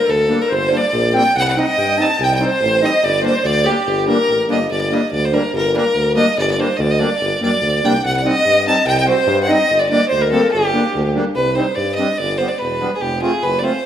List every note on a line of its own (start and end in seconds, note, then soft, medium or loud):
0.00 0.11 A#4 loud
0.06 0.33 D2 medium
0.06 0.50 A4 medium
0.06 0.43 A4 loud
0.28 0.39 G3 medium
0.28 0.39 A#3 medium
0.28 0.39 D4 medium
0.42 0.55 A#4 medium
0.49 0.76 G1 loud
0.49 0.71 C5 medium
0.53 0.78 C5 loud
0.69 0.82 G3 medium
0.69 0.82 A#3 medium
0.69 0.82 D4 medium
0.69 1.01 D5 medium
0.77 1.16 D5 loud
0.93 1.18 A#1 loud
1.13 1.24 G3 medium
1.13 1.23 A#3 medium
1.13 1.24 C4 medium
1.13 1.37 G5 loud
1.18 1.36 G5 medium
1.35 1.60 C2 medium
1.35 1.39 F#5 medium
1.35 1.46 F#5 loud
1.35 1.42 G5 medium
1.41 1.45 F#5 medium
1.46 1.59 F#5 medium
1.46 1.60 F#5 medium
1.56 1.66 G3 medium
1.56 1.66 C4 medium
1.56 1.66 D#4 medium
1.56 1.79 D#5 medium
1.56 2.03 D#5 loud
1.78 2.03 G2 medium
1.78 1.99 G5 medium
1.97 2.08 G3 medium
1.97 2.08 C4 medium
1.97 2.08 D#4 medium
1.97 2.18 A5 medium
2.02 2.25 A5 loud
2.18 2.44 C2 medium
2.18 2.35 G5 medium
2.24 2.32 G5 loud
2.33 2.42 D5 medium
2.33 2.46 G5 medium
2.39 2.50 G3 medium
2.39 2.50 C4 medium
2.39 2.50 D#4 medium
2.39 2.81 C5 medium
2.44 2.87 C5 loud
2.60 2.86 A1 loud
2.81 2.92 G3 medium
2.81 2.92 C4 medium
2.81 2.92 D#4 medium
2.81 3.01 D#5 medium
2.85 3.06 D#5 loud
3.02 3.28 G1 medium
3.02 3.23 D5 medium
3.02 3.24 D5 loud
3.21 3.34 G3 medium
3.21 3.34 A#3 medium
3.21 3.34 D4 medium
3.21 3.44 C5 medium
3.26 3.47 C5 medium
3.43 3.69 D2 loud
3.43 3.66 D5 loud
3.43 3.67 D5 loud
3.65 3.76 G3 medium
3.65 3.76 A#3 medium
3.65 3.76 D4 medium
3.65 4.49 G4 medium
3.65 4.07 G4 medium
3.86 4.11 G1 medium
4.07 4.17 G3 medium
4.07 4.18 A#3 medium
4.07 4.18 D4 medium
4.07 4.47 A#4 loud
4.28 4.47 A1 medium
4.49 4.68 G1 medium
4.49 4.59 G3 medium
4.49 4.59 A#3 medium
4.49 4.59 D4 medium
4.49 4.70 D#5 medium
4.70 4.95 G1 medium
4.70 4.81 D5 loud
4.81 4.95 D5 medium
4.91 5.01 G3 medium
4.91 5.02 A#3 medium
4.91 5.02 D4 medium
4.91 5.11 D#5 medium
5.12 5.37 D2 loud
5.12 5.26 D5 medium
5.25 5.35 C5 medium
5.32 5.43 G3 medium
5.32 5.43 A#3 medium
5.32 5.43 D4 medium
5.32 5.54 A#4 medium
5.53 5.78 G1 loud
5.53 5.74 A#4 medium
5.73 5.84 G3 medium
5.73 5.84 A#3 medium
5.73 5.85 D4 medium
5.73 6.15 A#4 medium
5.94 6.20 D2 medium
6.15 6.26 G3 medium
6.15 6.26 A#3 medium
6.15 6.26 D4 medium
6.15 6.36 D#5 medium
6.37 6.62 G1 loud
6.37 6.48 D5 loud
6.52 6.61 D5 medium
6.58 6.68 G3 medium
6.58 6.69 A#3 medium
6.58 6.69 D4 medium
6.58 6.78 C5 medium
6.77 7.03 D2 loud
6.77 6.93 D5 medium
6.77 6.82 D#5 medium
6.91 7.00 D#5 medium
6.99 7.09 G3 medium
6.99 7.10 A#3 medium
6.99 7.10 D4 medium
6.99 7.41 D5 loud
7.20 7.33 G1 loud
7.40 7.59 F#2 medium
7.40 7.51 G3 medium
7.40 7.52 A#3 medium
7.40 7.52 D4 medium
7.40 7.87 D5 loud
7.61 7.80 D2 medium
7.83 8.02 C2 medium
7.83 7.93 G3 medium
7.83 7.93 A#3 medium
7.83 7.94 D4 medium
7.83 8.04 G5 loud
8.03 8.29 C2 medium
8.03 8.12 F#5 medium
8.03 8.15 F#5 medium
8.13 8.22 F#5 medium
8.13 8.28 F#5 medium
8.22 8.34 G3 medium
8.22 8.35 C4 medium
8.22 8.35 D#4 medium
8.22 8.87 D#5 medium
8.26 8.67 D#5 loud
8.45 8.70 G2 medium
8.67 8.76 G3 medium
8.67 8.76 C4 medium
8.67 8.77 D#4 medium
8.67 8.86 A5 medium
8.86 9.11 C2 loud
8.86 8.96 G5 medium
8.86 8.96 G5 loud
8.97 9.08 G5 medium
8.97 9.07 G5 medium
9.07 9.17 G3 medium
9.07 9.18 C4 medium
9.07 9.18 F#4 medium
9.07 9.49 C5 medium
9.07 9.40 C5 medium
9.27 9.52 G2 loud
9.43 9.81 D#5 loud
9.43 9.52 F#5 medium
9.48 9.58 G3 medium
9.48 9.59 C4 medium
9.48 9.59 D#4 medium
9.48 9.81 D#5 loud
9.69 9.94 G1 medium
9.80 10.11 D5 medium
9.80 9.89 D5 medium
9.90 10.00 G3 medium
9.90 10.01 A#3 medium
9.90 10.01 D4 medium
9.90 10.08 D5 medium
10.09 10.36 D2 medium
10.09 10.23 C5 medium
10.21 10.31 A#4 medium
10.21 10.52 A#4 medium
10.31 10.42 G3 medium
10.31 10.42 A#3 medium
10.31 10.42 C4 medium
10.31 10.51 A4 medium
10.51 10.78 G1 medium
10.51 11.10 G4 medium
10.51 11.11 G4 medium
10.73 10.83 G3 medium
10.73 10.83 A#3 medium
10.73 10.84 D4 medium
10.94 11.19 D2 medium
11.15 11.25 G3 medium
11.15 11.25 A#3 medium
11.15 11.25 D4 medium
11.35 11.60 C2 medium
11.35 11.56 B4 medium
11.55 11.66 G3 medium
11.55 11.66 C4 medium
11.55 11.66 D#4 medium
11.55 11.77 C5 medium
11.75 12.01 G2 medium
11.75 11.94 D5 medium
11.95 12.08 G3 medium
11.95 12.08 C4 medium
11.95 12.08 D4 medium
11.95 12.19 D#5 medium
12.18 12.43 G1 medium
12.18 12.39 D5 loud
12.38 12.49 G3 medium
12.38 12.49 B3 medium
12.38 12.50 D4 medium
12.38 12.50 C5 medium
12.48 12.60 D5 medium
12.58 12.85 E1 medium
12.58 12.95 B4 medium
12.80 12.90 G3 medium
12.80 12.90 B3 medium
12.80 12.91 D4 medium
12.95 13.03 G#4 medium
13.00 13.25 F1 medium
13.00 13.21 G4 medium
13.22 13.32 A3 medium
13.22 13.32 C4 medium
13.22 13.32 F4 medium
13.22 13.44 G#4 medium
13.42 13.66 F#1 medium
13.42 13.60 B4 medium
13.59 13.73 A3 medium
13.59 13.73 C4 medium
13.59 13.65 D5 medium
13.63 13.73 F4 medium
13.63 13.86 C5 medium